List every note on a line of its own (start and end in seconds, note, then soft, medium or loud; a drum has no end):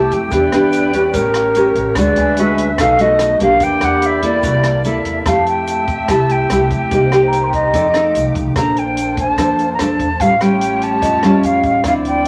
0.00 0.30 C3 medium
0.00 0.30 A3 soft
0.00 0.31 A3 medium
0.00 0.31 E4 medium
0.00 0.30 G4 medium
0.00 0.31 G4 medium
0.00 0.33 G4 loud
0.00 0.15 A5 medium
0.00 0.31 E6 medium
0.11 0.30 F2 loud
0.11 1.36 G5 medium
0.11 kick soft
0.11 closed hi-hat soft
0.11 shaker soft
0.31 0.51 E2 loud
0.31 1.12 E3 soft
0.31 1.13 B3 medium
0.31 0.49 B3 soft
0.31 0.50 D4 soft
0.31 1.13 E4 medium
0.31 1.95 G4 medium
0.31 0.50 G4 medium
0.31 1.16 B4 loud
0.31 1.13 D5 medium
0.31 kick medium
0.31 closed hi-hat medium
0.31 shaker medium
0.52 1.10 E2 medium
0.52 0.91 B3 medium
0.52 0.91 D4 medium
0.52 0.91 G4 medium
0.52 cross-stick medium
0.52 closed hi-hat soft
0.52 shaker soft
0.73 closed hi-hat soft
0.73 shaker medium
0.93 1.53 C#4 medium
0.93 1.53 G4 medium
0.93 kick soft
0.93 closed hi-hat soft
0.93 shaker soft
1.14 1.72 A1 loud
1.14 1.96 A3 medium
1.14 1.95 A3 medium
1.14 1.97 A#4 loud
1.14 1.96 C#5 medium
1.14 kick medium
1.14 closed hi-hat medium
1.14 shaker medium
1.34 cross-stick medium
1.34 closed hi-hat soft
1.34 shaker soft
1.55 1.95 C#4 medium
1.55 1.96 G4 medium
1.55 1.96 A#4 medium
1.55 closed hi-hat soft
1.55 shaker medium
1.75 1.95 A1 loud
1.75 kick soft
1.75 closed hi-hat soft
1.75 shaker soft
1.95 2.15 D2 medium
1.95 2.77 D3 medium
1.95 2.35 G#3 soft
1.95 2.78 D4 medium
1.95 3.60 F#4 medium
1.95 2.35 F#4 medium
1.95 2.78 G#4 medium
1.95 2.78 B4 loud
1.95 2.41 D5 medium
1.95 2.78 E5 medium
1.95 kick medium
1.95 cross-stick medium
1.95 closed hi-hat medium
1.95 shaker medium
2.16 2.75 D2 loud
2.16 2.96 G#5 medium
2.16 closed hi-hat soft
2.16 shaker soft
2.37 2.66 G#3 medium
2.37 2.66 C#4 medium
2.37 2.66 F#4 medium
2.37 2.83 E5 medium
2.37 closed hi-hat soft
2.37 shaker medium
2.58 kick soft
2.58 closed hi-hat soft
2.58 shaker soft
2.78 3.37 B1 loud
2.78 3.60 B2 medium
2.78 2.97 A3 medium
2.78 3.61 B3 medium
2.78 2.97 D#4 medium
2.78 2.97 F#4 medium
2.78 3.30 A4 loud
2.78 3.61 A4 medium
2.78 3.61 D#5 medium
2.78 3.03 F5 loud
2.78 kick medium
2.78 cross-stick medium
2.78 closed hi-hat medium
2.78 shaker medium
2.99 3.38 A3 medium
2.99 3.38 D#4 medium
2.99 3.38 F#4 medium
2.99 3.42 D#5 medium
2.99 closed hi-hat soft
2.99 shaker soft
3.19 cross-stick medium
3.19 closed hi-hat medium
3.19 shaker medium
3.40 3.60 B1 medium
3.40 4.20 A#3 medium
3.40 4.20 D4 medium
3.40 4.20 G4 medium
3.40 3.65 F5 loud
3.40 kick soft
3.40 closed hi-hat soft
3.40 shaker soft
3.60 3.80 E2 medium
3.60 4.41 E3 soft
3.60 5.24 A#3 medium
3.60 5.24 E4 medium
3.60 4.43 G4 medium
3.60 4.40 G4 loud
3.60 5.24 D5 medium
3.60 3.86 G5 loud
3.60 kick medium
3.60 closed hi-hat medium
3.60 shaker medium
3.81 4.40 E2 loud
3.81 4.08 F#5 loud
3.81 cross-stick medium
3.81 closed hi-hat soft
3.81 shaker soft
4.02 closed hi-hat soft
4.02 shaker medium
4.06 4.25 E5 medium
4.22 4.82 A#3 medium
4.22 4.82 E4 medium
4.22 4.82 A4 medium
4.22 4.82 D5 medium
4.22 kick soft
4.22 closed hi-hat soft
4.22 shaker soft
4.43 4.82 C2 loud
4.43 5.24 C3 medium
4.43 5.01 G4 medium
4.43 5.26 A4 medium
4.43 kick medium
4.43 closed hi-hat medium
4.43 shaker medium
4.63 cross-stick medium
4.63 closed hi-hat soft
4.63 shaker soft
4.84 5.04 D2 medium
4.84 5.23 A#3 medium
4.84 5.23 E4 medium
4.84 5.24 A4 medium
4.84 5.29 E5 medium
4.84 closed hi-hat soft
4.84 shaker medium
5.05 5.24 E2 medium
5.05 kick soft
5.05 closed hi-hat soft
5.05 shaker soft
5.26 6.04 F2 medium
5.26 6.07 F3 soft
5.26 5.82 A3 soft
5.26 6.90 A3 medium
5.26 5.82 E4 soft
5.26 5.82 G4 soft
5.26 8.53 G4 medium
5.26 6.90 E5 medium
5.26 5.48 F5 medium
5.26 6.20 A5 medium
5.26 kick medium
5.26 cross-stick medium
5.26 closed hi-hat soft
5.26 shaker medium
5.46 6.13 G5 medium
5.46 closed hi-hat soft
5.46 shaker soft
5.67 closed hi-hat soft
5.67 shaker medium
5.88 kick medium
5.88 closed hi-hat soft
5.88 shaker soft
6.08 6.47 C2 medium
6.08 6.89 C3 medium
6.08 6.46 A3 medium
6.08 6.47 E4 medium
6.08 6.47 G4 medium
6.08 6.33 A5 medium
6.08 kick medium
6.08 cross-stick medium
6.08 closed hi-hat soft
6.08 shaker medium
6.29 6.72 G5 medium
6.29 closed hi-hat soft
6.29 shaker soft
6.50 6.69 C2 medium
6.50 6.90 A3 medium
6.50 6.90 E4 medium
6.50 6.91 G4 medium
6.50 cross-stick medium
6.50 closed hi-hat soft
6.50 shaker medium
6.71 6.90 F2 medium
6.71 7.50 G5 medium
6.71 kick medium
6.71 closed hi-hat soft
6.71 shaker soft
6.91 7.70 C2 loud
6.91 7.72 C3 soft
6.91 7.73 A#3 medium
6.91 7.09 A#3 medium
6.91 8.55 D#4 medium
6.91 7.09 D#4 soft
6.91 7.10 G4 medium
6.91 7.73 C5 medium
6.91 kick medium
6.91 closed hi-hat soft
6.91 shaker medium
7.12 7.72 A#3 medium
7.12 7.72 D#4 medium
7.12 7.73 G4 medium
7.12 7.91 G5 medium
7.12 cross-stick medium
7.12 closed hi-hat soft
7.12 shaker soft
7.28 8.03 A#5 soft
7.32 closed hi-hat soft
7.32 shaker medium
7.44 8.16 C6 soft
7.53 8.32 D#5 medium
7.53 kick medium
7.53 closed hi-hat soft
7.53 shaker soft
7.74 8.12 F2 loud
7.74 8.54 F3 medium
7.74 8.55 A3 medium
7.74 7.86 D#4 medium
7.74 7.86 A4 medium
7.74 7.86 D5 medium
7.74 8.55 D6 medium
7.74 kick medium
7.74 closed hi-hat soft
7.74 shaker medium
7.94 8.53 D#4 medium
7.94 8.54 A4 medium
7.94 cross-stick medium
7.94 closed hi-hat soft
7.94 shaker soft
8.15 8.34 C2 medium
8.15 closed hi-hat soft
8.15 shaker medium
8.35 8.54 C2 medium
8.35 kick medium
8.35 closed hi-hat soft
8.35 shaker soft
8.56 9.34 A#1 medium
8.56 10.19 A#3 medium
8.56 9.37 A#3 medium
8.56 10.19 D4 medium
8.56 9.35 D4 soft
8.56 10.19 A4 medium
8.56 9.36 A4 soft
8.56 10.19 C5 medium
8.56 9.36 C5 medium
8.56 8.80 A#5 medium
8.56 kick medium
8.56 cross-stick medium
8.56 closed hi-hat soft
8.56 shaker medium
8.76 9.19 G5 medium
8.76 closed hi-hat soft
8.76 shaker soft
8.97 closed hi-hat soft
8.97 shaker medium
9.17 9.70 A5 medium
9.17 kick medium
9.17 closed hi-hat soft
9.17 shaker soft
9.38 9.76 F2 loud
9.38 10.19 F3 medium
9.38 9.65 D4 medium
9.38 9.65 A4 medium
9.38 9.65 C5 medium
9.38 kick medium
9.38 cross-stick medium
9.38 closed hi-hat soft
9.38 shaker medium
9.59 closed hi-hat soft
9.59 shaker soft
9.74 9.82 A#5 medium
9.79 9.99 F2 medium
9.79 10.08 D4 medium
9.79 10.08 A4 soft
9.79 10.08 C5 medium
9.79 10.22 A5 medium
9.79 cross-stick medium
9.79 closed hi-hat soft
9.79 shaker medium
9.99 10.19 E2 medium
9.99 kick medium
9.99 closed hi-hat soft
9.99 shaker soft
10.20 10.99 A1 medium
10.20 11.01 A2 soft
10.20 10.33 G3 soft
10.20 11.83 A3 medium
10.20 10.33 C#4 medium
10.20 11.83 F4 medium
10.20 10.33 F4 medium
10.20 11.83 G4 medium
10.20 11.83 C#5 medium
10.20 10.43 F5 medium
10.20 kick medium
10.20 closed hi-hat soft
10.20 shaker medium
10.41 11.20 G3 medium
10.41 11.20 C#4 medium
10.41 11.21 F4 medium
10.41 10.85 G5 medium
10.41 cross-stick medium
10.41 closed hi-hat soft
10.41 shaker soft
10.61 closed hi-hat soft
10.61 shaker medium
10.82 11.47 A5 medium
10.82 closed hi-hat soft
10.82 shaker soft
11.02 11.41 F2 loud
11.02 11.83 A2 medium
11.02 11.96 D#5 medium
11.02 kick medium
11.02 closed hi-hat soft
11.02 shaker medium
11.23 11.82 G3 medium
11.23 11.82 C#4 medium
11.23 11.82 F4 medium
11.23 cross-stick medium
11.23 closed hi-hat soft
11.23 shaker soft
11.43 11.63 F2 medium
11.43 11.86 F5 medium
11.43 closed hi-hat soft
11.43 shaker medium
11.63 11.83 A1 medium
11.63 kick medium
11.63 closed hi-hat soft
11.63 shaker soft
11.84 12.28 D2 medium
11.84 12.28 D3 soft
11.84 12.28 F3 medium
11.84 12.28 C4 medium
11.84 12.28 C4 soft
11.84 12.28 E4 medium
11.84 12.28 E4 soft
11.84 12.28 D5 loud
11.84 12.28 D5 medium
11.84 11.93 F5 loud
11.84 kick medium
11.84 cross-stick medium
11.84 closed hi-hat soft
11.84 shaker medium
12.05 12.28 G5 medium
12.05 closed hi-hat soft
12.05 shaker soft